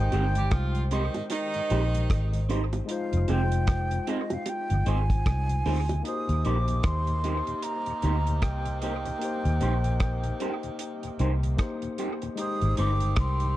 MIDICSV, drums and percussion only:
0, 0, Header, 1, 2, 480
1, 0, Start_track
1, 0, Key_signature, -3, "major"
1, 0, Tempo, 791557
1, 1751, Time_signature, 4, 2, 24, 8
1, 8228, End_track
2, 0, Start_track
2, 0, Title_t, "Drums"
2, 73, Note_on_c, 9, 42, 59
2, 73, Note_on_c, 9, 60, 52
2, 133, Note_off_c, 9, 42, 0
2, 134, Note_off_c, 9, 60, 0
2, 214, Note_on_c, 9, 42, 60
2, 274, Note_off_c, 9, 42, 0
2, 309, Note_on_c, 9, 42, 82
2, 313, Note_on_c, 9, 36, 119
2, 313, Note_on_c, 9, 37, 111
2, 370, Note_off_c, 9, 42, 0
2, 373, Note_off_c, 9, 36, 0
2, 373, Note_off_c, 9, 37, 0
2, 453, Note_on_c, 9, 42, 49
2, 514, Note_off_c, 9, 42, 0
2, 552, Note_on_c, 9, 42, 85
2, 612, Note_off_c, 9, 42, 0
2, 693, Note_on_c, 9, 42, 45
2, 694, Note_on_c, 9, 60, 70
2, 754, Note_off_c, 9, 42, 0
2, 755, Note_off_c, 9, 60, 0
2, 787, Note_on_c, 9, 42, 109
2, 790, Note_on_c, 9, 60, 67
2, 848, Note_off_c, 9, 42, 0
2, 850, Note_off_c, 9, 60, 0
2, 932, Note_on_c, 9, 42, 48
2, 993, Note_off_c, 9, 42, 0
2, 1032, Note_on_c, 9, 42, 64
2, 1092, Note_off_c, 9, 42, 0
2, 1179, Note_on_c, 9, 42, 58
2, 1240, Note_off_c, 9, 42, 0
2, 1273, Note_on_c, 9, 36, 102
2, 1273, Note_on_c, 9, 42, 88
2, 1277, Note_on_c, 9, 37, 118
2, 1333, Note_off_c, 9, 36, 0
2, 1333, Note_off_c, 9, 42, 0
2, 1337, Note_off_c, 9, 37, 0
2, 1416, Note_on_c, 9, 42, 61
2, 1477, Note_off_c, 9, 42, 0
2, 1513, Note_on_c, 9, 61, 68
2, 1514, Note_on_c, 9, 42, 71
2, 1573, Note_off_c, 9, 61, 0
2, 1575, Note_off_c, 9, 42, 0
2, 1654, Note_on_c, 9, 42, 51
2, 1655, Note_on_c, 9, 60, 81
2, 1715, Note_off_c, 9, 42, 0
2, 1715, Note_off_c, 9, 60, 0
2, 1751, Note_on_c, 9, 42, 93
2, 1811, Note_off_c, 9, 42, 0
2, 1897, Note_on_c, 9, 42, 54
2, 1957, Note_off_c, 9, 42, 0
2, 1989, Note_on_c, 9, 42, 60
2, 1990, Note_on_c, 9, 60, 52
2, 2049, Note_off_c, 9, 42, 0
2, 2050, Note_off_c, 9, 60, 0
2, 2132, Note_on_c, 9, 42, 58
2, 2193, Note_off_c, 9, 42, 0
2, 2226, Note_on_c, 9, 42, 85
2, 2229, Note_on_c, 9, 37, 115
2, 2230, Note_on_c, 9, 36, 124
2, 2287, Note_off_c, 9, 42, 0
2, 2290, Note_off_c, 9, 36, 0
2, 2290, Note_off_c, 9, 37, 0
2, 2371, Note_on_c, 9, 42, 54
2, 2432, Note_off_c, 9, 42, 0
2, 2470, Note_on_c, 9, 42, 78
2, 2530, Note_off_c, 9, 42, 0
2, 2608, Note_on_c, 9, 42, 48
2, 2609, Note_on_c, 9, 60, 70
2, 2669, Note_off_c, 9, 42, 0
2, 2670, Note_off_c, 9, 60, 0
2, 2703, Note_on_c, 9, 42, 104
2, 2705, Note_on_c, 9, 60, 71
2, 2763, Note_off_c, 9, 42, 0
2, 2766, Note_off_c, 9, 60, 0
2, 2850, Note_on_c, 9, 42, 55
2, 2911, Note_off_c, 9, 42, 0
2, 2948, Note_on_c, 9, 42, 63
2, 3008, Note_off_c, 9, 42, 0
2, 3092, Note_on_c, 9, 36, 71
2, 3094, Note_on_c, 9, 42, 58
2, 3152, Note_off_c, 9, 36, 0
2, 3154, Note_off_c, 9, 42, 0
2, 3189, Note_on_c, 9, 42, 84
2, 3190, Note_on_c, 9, 36, 115
2, 3193, Note_on_c, 9, 37, 117
2, 3249, Note_off_c, 9, 42, 0
2, 3250, Note_off_c, 9, 36, 0
2, 3253, Note_off_c, 9, 37, 0
2, 3331, Note_on_c, 9, 42, 62
2, 3392, Note_off_c, 9, 42, 0
2, 3430, Note_on_c, 9, 46, 73
2, 3431, Note_on_c, 9, 61, 72
2, 3490, Note_off_c, 9, 46, 0
2, 3492, Note_off_c, 9, 61, 0
2, 3573, Note_on_c, 9, 42, 53
2, 3574, Note_on_c, 9, 60, 84
2, 3634, Note_off_c, 9, 42, 0
2, 3634, Note_off_c, 9, 60, 0
2, 3669, Note_on_c, 9, 42, 82
2, 3730, Note_off_c, 9, 42, 0
2, 3814, Note_on_c, 9, 42, 47
2, 3875, Note_off_c, 9, 42, 0
2, 3909, Note_on_c, 9, 42, 54
2, 3970, Note_off_c, 9, 42, 0
2, 4050, Note_on_c, 9, 42, 57
2, 4110, Note_off_c, 9, 42, 0
2, 4144, Note_on_c, 9, 42, 81
2, 4147, Note_on_c, 9, 37, 105
2, 4148, Note_on_c, 9, 36, 108
2, 4204, Note_off_c, 9, 42, 0
2, 4208, Note_off_c, 9, 36, 0
2, 4208, Note_off_c, 9, 37, 0
2, 4288, Note_on_c, 9, 42, 47
2, 4349, Note_off_c, 9, 42, 0
2, 4390, Note_on_c, 9, 42, 74
2, 4451, Note_off_c, 9, 42, 0
2, 4530, Note_on_c, 9, 42, 46
2, 4591, Note_off_c, 9, 42, 0
2, 4624, Note_on_c, 9, 42, 98
2, 4685, Note_off_c, 9, 42, 0
2, 4767, Note_on_c, 9, 42, 48
2, 4828, Note_off_c, 9, 42, 0
2, 4865, Note_on_c, 9, 42, 55
2, 4926, Note_off_c, 9, 42, 0
2, 5014, Note_on_c, 9, 42, 53
2, 5074, Note_off_c, 9, 42, 0
2, 5106, Note_on_c, 9, 42, 81
2, 5108, Note_on_c, 9, 36, 98
2, 5110, Note_on_c, 9, 37, 111
2, 5166, Note_off_c, 9, 42, 0
2, 5168, Note_off_c, 9, 36, 0
2, 5170, Note_off_c, 9, 37, 0
2, 5249, Note_on_c, 9, 42, 54
2, 5309, Note_off_c, 9, 42, 0
2, 5347, Note_on_c, 9, 42, 63
2, 5407, Note_off_c, 9, 42, 0
2, 5491, Note_on_c, 9, 42, 48
2, 5551, Note_off_c, 9, 42, 0
2, 5588, Note_on_c, 9, 42, 88
2, 5649, Note_off_c, 9, 42, 0
2, 5732, Note_on_c, 9, 42, 49
2, 5793, Note_off_c, 9, 42, 0
2, 5825, Note_on_c, 9, 42, 55
2, 5886, Note_off_c, 9, 42, 0
2, 5968, Note_on_c, 9, 42, 57
2, 6029, Note_off_c, 9, 42, 0
2, 6063, Note_on_c, 9, 42, 76
2, 6066, Note_on_c, 9, 37, 108
2, 6067, Note_on_c, 9, 36, 105
2, 6124, Note_off_c, 9, 42, 0
2, 6127, Note_off_c, 9, 36, 0
2, 6127, Note_off_c, 9, 37, 0
2, 6207, Note_on_c, 9, 42, 50
2, 6268, Note_off_c, 9, 42, 0
2, 6308, Note_on_c, 9, 42, 81
2, 6368, Note_off_c, 9, 42, 0
2, 6447, Note_on_c, 9, 42, 42
2, 6508, Note_off_c, 9, 42, 0
2, 6543, Note_on_c, 9, 42, 105
2, 6604, Note_off_c, 9, 42, 0
2, 6689, Note_on_c, 9, 42, 51
2, 6750, Note_off_c, 9, 42, 0
2, 6788, Note_on_c, 9, 42, 60
2, 6849, Note_off_c, 9, 42, 0
2, 6933, Note_on_c, 9, 42, 53
2, 6994, Note_off_c, 9, 42, 0
2, 7025, Note_on_c, 9, 42, 80
2, 7027, Note_on_c, 9, 36, 101
2, 7029, Note_on_c, 9, 37, 120
2, 7086, Note_off_c, 9, 42, 0
2, 7087, Note_off_c, 9, 36, 0
2, 7090, Note_off_c, 9, 37, 0
2, 7168, Note_on_c, 9, 42, 55
2, 7229, Note_off_c, 9, 42, 0
2, 7266, Note_on_c, 9, 42, 67
2, 7326, Note_off_c, 9, 42, 0
2, 7409, Note_on_c, 9, 42, 46
2, 7469, Note_off_c, 9, 42, 0
2, 7503, Note_on_c, 9, 42, 86
2, 7564, Note_off_c, 9, 42, 0
2, 7649, Note_on_c, 9, 42, 44
2, 7710, Note_off_c, 9, 42, 0
2, 7744, Note_on_c, 9, 42, 58
2, 7749, Note_on_c, 9, 60, 52
2, 7805, Note_off_c, 9, 42, 0
2, 7810, Note_off_c, 9, 60, 0
2, 7886, Note_on_c, 9, 42, 58
2, 7947, Note_off_c, 9, 42, 0
2, 7981, Note_on_c, 9, 42, 77
2, 7984, Note_on_c, 9, 37, 105
2, 7986, Note_on_c, 9, 36, 108
2, 8041, Note_off_c, 9, 42, 0
2, 8044, Note_off_c, 9, 37, 0
2, 8047, Note_off_c, 9, 36, 0
2, 8125, Note_on_c, 9, 42, 49
2, 8186, Note_off_c, 9, 42, 0
2, 8228, End_track
0, 0, End_of_file